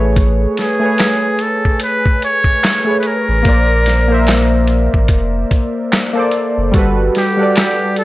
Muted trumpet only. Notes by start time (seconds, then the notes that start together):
0.60 G#4
1.42 A4
1.83 B4
2.25 C#5
3.00 B4
3.07 A#4
7.18 G4
7.58 G4
7.99 A4